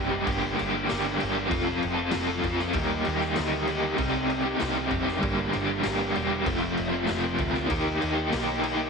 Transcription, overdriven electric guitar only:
Already playing: G3 C4
0.09 D#4 G4
0.13 C4
0.23 G2 D3 G3 A#3
0.27 D4 G4
0.54 G3 A#3 D4
0.59 G4
0.70 D4 G4
0.74 G3 A#3
0.85 G2 D3 G3 A#3 D4
0.89 G4
1.16 G3 A#3 D4
1.21 G4
1.32 A#3 D4 G4
1.37 G3
1.46 F3 C4 F4
1.51 A4
1.64 F4 A4
1.68 C4
1.94 C4 F4 A4
2.10 F3 C4 F4
2.15 A4
2.27 F4 A4
2.32 C4
2.41 F3 C4 F4
2.46 A4
2.57 F4 A4
2.61 C4
2.73 D#3 G3 A#3 D#4
2.78 G4
3.04 G3 A#3
3.08 D#4 G4
3.19 D#4 G4
3.24 A#3
3.34 D#3 G3 A#3
3.38 D#4 G4
3.67 G3 A#3 D#4
3.72 G4
3.80 D#4 G4
3.85 A#3
3.96 C3 G3 C4 D#4
4.02 G4
4.10 D#4 G4
4.14 C4
4.42 D#4 G4
4.47 C4
4.56 C3 G3 C4
4.61 D#4 G4
4.72 D#4 G4
4.78 C4
4.87 G3 C4 D#4
4.93 G4
5.03 C4 D#4 G4
5.18 G2 D3 G3 A#3 G4
5.22 D4
5.49 G3 A#3 D4
5.54 G4
5.64 A#3 D4 G4
5.69 G3
5.80 G2 D3 G3 A#3
5.84 D4 G4
6.12 G3 A#3 D4
6.16 G4
6.27 G3 A#3 D4 G4
6.42 F2 C3 F3 A3 C4
6.47 F4
6.59 A3 C4 F4
6.64 F3
6.89 A3 C4 F4
6.94 F3
7.05 F2 C3 F3 A3 C4
7.10 F4
7.20 A3 C4 F4
7.25 F3
7.35 F3 A3 C4
7.39 F4
7.50 A3 C4 F4
7.55 F3
7.66 D#3 A#3 D#4
7.70 G4
7.96 D#3 A#3 D#4
8.01 G4
8.13 D#4 G4
8.17 A#3
8.28 D#3 A#3 D#4
8.33 G4
8.59 D#3 A#3 D#4
8.65 G4
8.74 D#4 G4
8.78 A#3

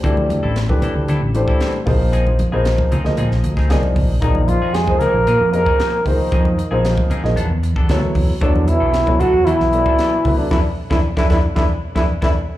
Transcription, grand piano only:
0.03 E3 A3 D4 G4 D5
0.68 E3 A3 D4 G4 B4
1.34 E3 A3 D4 G4 C5
1.86 F3 A#3 D#4 G#4 C5
2.52 F3 A#3 D#4 G#4 C5
3.04 F3 A#3 D#4 G#4 D#5
3.69 F3 A#3 D#4 G#4 D5 G#5
4.22 F3 A#3 D#4 G#4 D5
4.88 F3 A#3 D#4 G#4 C5
5.53 F3 A#3 D#4 G#4 D#5
6.06 F3 A#3 D#4 G#4 C5
6.71 F3 A#3 D#4 G#4 C5
7.24 F3 A#3 D#4 G#4 D#5
7.89 F#3 B3 E4 A4 C#5
8.41 F#3 B3 E4 A4 C#5
9.07 F#3 B3 E4 A4 C#5
9.73 F#3 B3 E4 A4 D5
10.24 F#3 B3 E4 A4 B4
10.51 D4 E4 A4
10.90 D4 E4 A4
11.17 D4 E4 A4
11.30 D4 E4 A4
11.57 D4 E4 A4
11.95 D4 E4 A4
12.22 D4 E4 A4

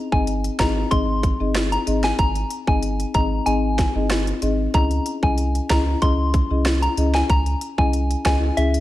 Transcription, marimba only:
0.13 C4 D#4 G#4 D#5
0.59 C4 D#4 G#4 D#5
0.91 C4 D#4 G#4 D#5
1.40 C4 D#4 G#4 D#5
1.87 C4 D#4 G#4 D#5
2.67 C4 D#4 G#4 D#5
3.14 C4 D#4 G#4 D#5
3.46 C4 D#4 G#4 D#5
3.95 C4 D#4 G#4 D#5
4.42 C4 D#4 G#4 D#5
4.74 C#4 E4 G#4 D#5
5.23 C#4 E4 G#4 D#5
5.70 C#4 E4 G#4 D#5
6.02 C#4 E4 G#4 D#5
6.50 C#4 E4 G#4 D#5
6.98 C#4 E4 G#4 D#5
7.78 C#4 E4 G#4 D#5
8.25 C#4 E4 G#4 D#5
8.57 C#4 E4 G#4 E5

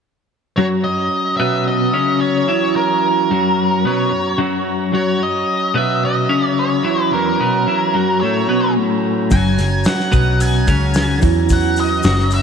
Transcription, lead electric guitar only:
0.56 C#5
0.84 D#5
1.37 E5
1.68 D#5
2.21 C#5
2.76 A#4
3.87 C#5
4.95 C#5
5.23 D#5
5.77 E5
6.05 D#5
6.49 C#5
6.59 C#5
7.13 A#4
8.21 C#5
9.32 G#5
9.87 F#5
10.42 G#5
11.53 F#5
11.80 D#5
12.34 E5

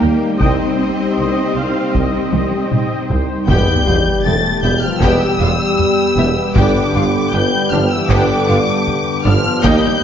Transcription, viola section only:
0.02 A#4 G5
0.40 D#5 G5
1.18 D#5
1.57 F5
1.95 D#5
2.33 D#5
2.72 D#5
3.11 C5
3.49 B3 G4
3.87 B3 G4
4.26 B3 G4
4.64 B3 G4
5.02 B3 G4
5.41 B3 G4
6.18 B3 G4
6.56 B3 D4
6.95 B3 D4
7.33 B3 D4
7.72 B3 D4
8.11 B3 D4
8.49 B3 D4
9.26 B3 D4
9.64 A#3 D#4

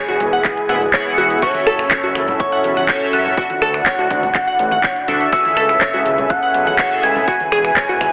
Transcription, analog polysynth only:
0.69 B3 E4 G#4 E5
0.93 B3 E4 G#4 F#5
1.42 C#4 F#4 A4 E5
2.89 C#4 F#4 A4 E5
3.37 D4 F#4 A4 E5
5.08 D4 F#4 A4 E5
5.33 C#4 G#4 A4
6.79 C#4 G#4 A4 E5
7.28 B3 E4 G#4 E5

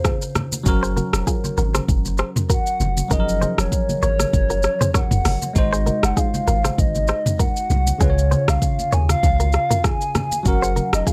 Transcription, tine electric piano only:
Already playing: C#3 C#4 F4 G#4
0.63 F#3 C#4 F#4
0.68 A#4
3.08 F3 F#3 C#4
3.13 G#4
3.20 A#4
5.53 G#3 D#4 F#4
5.58 C5
7.98 C#3 C#4 F4
8.03 B4
8.10 C#5
10.43 F#3 C#4 F#4
10.48 A#4

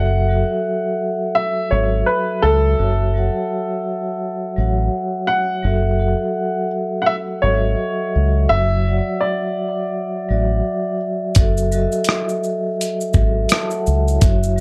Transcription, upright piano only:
Already playing: F#5
1.35 E5
1.71 C#5
2.06 B4
2.42 A4
5.27 F#5
7.02 F#5
7.06 E5
7.42 C#5
8.49 E5
9.21 D5

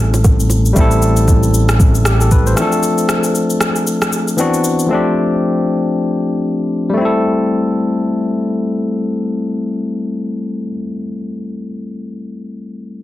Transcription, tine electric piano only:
Already playing: G3 A3 C4 E4 A4
0.73 G3 A3 C4
0.79 E4 A4
2.06 G4
2.21 A4
2.32 B4
2.47 C5
2.54 E3 A3 C4
2.60 F3 D4 A4
4.37 E3 B3 C4 D4 F#4
4.87 F3 A3 C4
4.93 D4 G4
6.90 G3 A3
6.97 C4 E4
7.05 A4

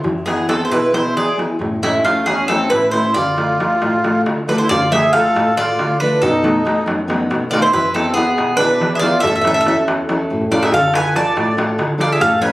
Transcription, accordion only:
0.26 B3
0.48 C4
0.67 E4
0.71 E4
0.95 E4
1.17 G#4
1.82 G#3
2.05 A3
2.28 C#4
2.50 C4
2.72 E4
2.94 E4
3.16 F4
4.50 D4
4.60 E4
4.71 F4
4.94 G#4
5.15 A4
5.59 F4
6.02 D4
6.24 D#4
7.51 F4
7.63 E4
7.72 E4
7.94 C4
8.14 B3
8.57 D4
8.96 F4 G#4
9.23 A4
10.53 F4
10.63 G#4
10.74 A4
10.95 B4
11.17 D5
12.01 F4
12.12 G#4
12.23 A4
12.43 B4

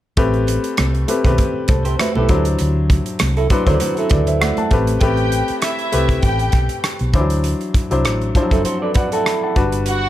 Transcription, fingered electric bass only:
0.18 A1
0.79 C2
1.25 B1
1.69 C2
2.17 B1
2.30 D2
2.61 D2
3.21 C2
3.67 D2
4.11 D2
4.72 A1
5.02 A1
5.50 muted fingered electric bass stroke
5.94 C2
6.24 A1
6.54 B1
7.01 B1
7.14 D2
7.75 muted fingered electric bass stroke
7.91 C2
8.06 A1
8.52 F#1
9.57 G1

